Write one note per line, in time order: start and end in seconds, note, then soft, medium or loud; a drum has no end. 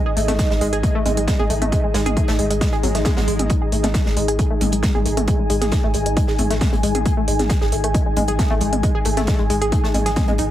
0.00 10.51 D#4 medium
0.00 10.51 G#4 medium
0.00 3.63 D#5 medium
0.06 0.10 G#4 loud
0.17 0.28 G#1 medium
0.17 0.21 A3 medium
0.17 closed hi-hat medium
0.17 open hi-hat loud
0.28 0.39 G#1 medium
0.28 0.32 A3 loud
0.28 snare soft
0.28 closed hi-hat medium
0.28 mid tom medium
0.39 0.45 G#3 medium
0.39 kick loud
0.39 snare loud
0.39 closed hi-hat medium
0.50 0.60 G#1 medium
0.50 0.53 G#3 medium
0.50 snare medium
0.61 0.72 G#1 loud
0.61 0.68 G#3 loud
0.61 closed hi-hat medium
0.61 open hi-hat loud
0.73 0.83 G#1 medium
0.73 0.77 G#4 loud
0.73 closed hi-hat medium
0.83 0.88 A3 medium
0.83 kick loud
0.83 closed hi-hat medium
0.95 0.99 A3 loud
1.06 1.17 G#1 medium
1.06 1.12 G#3 medium
1.06 closed hi-hat medium
1.06 mid tom medium
1.06 open hi-hat loud
1.17 1.28 G#1 medium
1.17 1.19 G#3 medium
1.17 closed hi-hat soft
1.17 closed hi-hat medium
1.28 1.34 G#3 loud
1.28 kick loud
1.28 snare loud
1.28 closed hi-hat medium
1.28 mid tom loud
1.39 1.49 G#1 medium
1.39 1.43 G#4 loud
1.39 mid tom medium
1.50 1.61 G#1 loud
1.50 1.54 A3 medium
1.50 closed hi-hat medium
1.50 open hi-hat loud
1.61 1.72 G#1 medium
1.61 1.65 A3 medium
1.61 closed hi-hat medium
1.61 mid tom medium
1.72 1.79 G#3 medium
1.72 kick loud
1.72 closed hi-hat medium
1.84 1.86 G#3 medium
1.94 2.05 G#1 loud
1.94 2.01 G#3 loud
1.94 snare loud
1.94 closed hi-hat medium
1.94 open hi-hat loud
2.06 2.16 G#1 medium
2.06 2.10 G#4 loud
2.06 closed hi-hat soft
2.06 closed hi-hat medium
2.06 mid tom medium
2.17 2.21 A3 medium
2.17 kick loud
2.17 closed hi-hat medium
2.28 2.38 G#1 medium
2.28 2.32 A3 loud
2.28 snare loud
2.28 closed hi-hat medium
2.39 2.50 G#1 loud
2.39 2.45 G#3 medium
2.39 closed hi-hat soft
2.39 open hi-hat loud
2.50 2.61 G#1 medium
2.50 2.53 G#3 medium
2.50 closed hi-hat medium
2.61 2.67 G#3 loud
2.61 kick loud
2.61 snare loud
2.61 closed hi-hat medium
2.61 swell medium
2.73 2.77 G#4 loud
2.73 closed hi-hat soft
2.83 2.94 G#1 medium
2.83 2.88 F#3 medium
2.83 closed hi-hat medium
2.83 mid tom medium
2.83 open hi-hat loud
2.95 3.05 G#1 medium
2.95 2.99 A3 medium
2.95 snare soft
2.95 closed hi-hat medium
3.05 3.08 G#4 medium
3.05 kick loud
3.05 snare loud
3.05 closed hi-hat medium
3.05 mid tom medium
3.17 3.27 G#1 medium
3.17 3.21 F#3 medium
3.17 snare loud
3.17 closed hi-hat medium
3.17 mid tom medium
3.28 3.39 G#1 loud
3.28 3.34 G#3 medium
3.28 closed hi-hat medium
3.28 open hi-hat loud
3.39 3.50 G#1 medium
3.39 3.42 G#3 medium
3.39 closed hi-hat medium
3.39 mid tom medium
3.50 3.56 G#3 loud
3.50 kick loud
3.50 closed hi-hat medium
3.61 3.65 G#4 loud
3.61 10.51 G#5 loud
3.72 3.83 G#1 loud
3.72 3.77 A3 medium
3.72 closed hi-hat medium
3.72 open hi-hat loud
3.83 3.94 G#1 medium
3.83 3.88 A3 loud
3.83 snare soft
3.83 closed hi-hat medium
3.83 mid tom medium
3.94 4.01 G#3 medium
3.94 kick loud
3.94 snare loud
3.94 closed hi-hat medium
4.06 4.16 G#1 medium
4.06 4.08 G#3 medium
4.06 snare medium
4.17 4.28 G#1 loud
4.17 4.23 G#3 loud
4.17 closed hi-hat medium
4.17 open hi-hat loud
4.28 4.39 G#1 medium
4.28 4.32 G#4 loud
4.28 closed hi-hat medium
4.39 4.43 A3 medium
4.39 kick loud
4.39 closed hi-hat medium
4.50 4.54 A3 loud
4.61 4.72 G#1 loud
4.61 4.67 G#3 medium
4.61 closed hi-hat medium
4.61 mid tom medium
4.61 open hi-hat loud
4.72 4.83 G#1 medium
4.72 4.75 G#3 medium
4.72 closed hi-hat soft
4.72 closed hi-hat medium
4.83 4.90 G#3 loud
4.83 kick loud
4.83 snare loud
4.83 closed hi-hat medium
4.83 mid tom medium
4.95 5.05 G#1 medium
4.95 4.99 G#4 loud
4.95 mid tom medium
5.05 5.17 G#1 loud
5.05 5.10 A3 medium
5.05 closed hi-hat medium
5.05 open hi-hat loud
5.17 5.28 G#1 medium
5.17 5.21 A3 loud
5.17 closed hi-hat medium
5.17 mid tom medium
5.28 5.34 G#3 medium
5.28 kick loud
5.28 closed hi-hat medium
5.39 5.42 G#3 medium
5.50 5.61 G#1 loud
5.50 5.56 G#3 loud
5.50 closed hi-hat medium
5.50 open hi-hat loud
5.61 5.72 G#1 medium
5.61 5.65 G#4 loud
5.61 snare soft
5.61 closed hi-hat medium
5.61 mid tom medium
5.72 5.76 A3 medium
5.72 kick loud
5.72 snare loud
5.72 closed hi-hat medium
5.84 5.94 G#1 medium
5.84 5.88 A3 loud
5.94 6.06 G#1 loud
5.94 6.01 G#3 medium
5.94 closed hi-hat medium
5.94 open hi-hat loud
6.06 6.17 G#1 medium
6.06 6.08 G#3 medium
6.06 closed hi-hat medium
6.17 6.23 G#3 loud
6.17 kick loud
6.17 closed hi-hat medium
6.27 6.32 G#4 medium
6.27 snare soft
6.39 6.50 G#1 loud
6.39 6.43 A3 medium
6.39 closed hi-hat medium
6.39 mid tom medium
6.39 open hi-hat loud
6.50 6.61 G#1 medium
6.50 6.54 A3 loud
6.50 snare medium
6.50 closed hi-hat medium
6.61 6.67 G#3 medium
6.61 kick loud
6.61 snare loud
6.61 closed hi-hat medium
6.61 mid tom medium
6.73 6.83 G#1 medium
6.73 6.75 G#3 medium
6.73 closed hi-hat soft
6.73 mid tom medium
6.83 6.94 G#1 loud
6.83 6.90 G#3 loud
6.83 closed hi-hat medium
6.83 open hi-hat loud
6.95 7.05 G#1 medium
6.95 6.99 G#4 loud
6.95 closed hi-hat medium
6.95 mid tom medium
7.05 7.10 A3 medium
7.05 kick loud
7.05 closed hi-hat medium
7.17 7.21 A3 loud
7.28 7.39 G#1 loud
7.28 7.34 G#3 medium
7.28 closed hi-hat medium
7.28 open hi-hat loud
7.39 7.50 G#1 medium
7.39 7.42 G#3 medium
7.39 snare soft
7.39 closed hi-hat medium
7.39 mid tom medium
7.50 7.56 G#3 loud
7.50 kick loud
7.50 snare loud
7.50 closed hi-hat medium
7.61 7.72 G#1 medium
7.61 7.65 G#4 loud
7.61 snare medium
7.72 7.83 G#1 loud
7.72 7.76 A3 medium
7.72 closed hi-hat medium
7.72 open hi-hat loud
7.84 7.94 G#1 medium
7.84 7.88 A3 loud
7.84 closed hi-hat medium
7.94 8.01 G#3 medium
7.94 kick loud
7.94 closed hi-hat medium
8.06 8.08 G#3 medium
8.16 8.28 G#1 loud
8.16 8.23 G#3 loud
8.16 closed hi-hat medium
8.16 mid tom medium
8.16 open hi-hat loud
8.28 8.39 G#1 medium
8.28 8.32 G#4 loud
8.28 closed hi-hat soft
8.28 closed hi-hat medium
8.39 8.43 A3 medium
8.39 kick loud
8.39 snare loud
8.39 closed hi-hat medium
8.39 mid tom loud
8.50 8.60 G#1 medium
8.50 8.54 A3 loud
8.50 mid tom medium
8.61 8.72 G#1 loud
8.61 8.67 G#3 medium
8.61 closed hi-hat medium
8.61 open hi-hat loud
8.73 8.83 G#1 medium
8.73 8.75 G#3 medium
8.73 closed hi-hat medium
8.73 mid tom medium
8.83 8.90 G#3 loud
8.83 kick loud
8.83 closed hi-hat medium
8.95 8.99 G#4 loud
9.05 9.17 G#1 loud
9.05 9.10 A3 medium
9.05 closed hi-hat medium
9.05 open hi-hat loud
9.17 9.28 G#1 medium
9.17 9.21 A3 loud
9.17 snare soft
9.17 closed hi-hat medium
9.17 mid tom loud
9.27 9.34 G#3 medium
9.27 kick loud
9.27 snare loud
9.27 closed hi-hat medium
9.39 9.49 G#1 medium
9.39 9.42 G#3 medium
9.50 9.61 G#1 loud
9.50 9.56 G#3 medium
9.50 closed hi-hat medium
9.50 open hi-hat loud
9.61 9.72 G#1 medium
9.61 9.65 G#4 loud
9.61 closed hi-hat medium
9.72 9.76 A3 medium
9.72 kick loud
9.72 closed hi-hat medium
9.84 9.88 A3 medium
9.84 snare medium
9.94 10.05 G#1 loud
9.94 9.97 G#3 medium
9.94 closed hi-hat medium
9.94 mid tom medium
9.94 open hi-hat loud
10.06 10.16 G#1 medium
10.06 10.10 G#4 loud
10.06 snare soft
10.06 closed hi-hat medium
10.16 10.23 G#3 medium
10.16 kick loud
10.16 snare loud
10.16 closed hi-hat medium
10.16 mid tom medium
10.28 10.38 G#1 medium
10.28 10.32 G#3 loud
10.28 closed hi-hat soft
10.28 mid tom medium
10.38 10.50 G#1 loud
10.38 10.45 D#4 medium
10.38 closed hi-hat medium
10.38 open hi-hat loud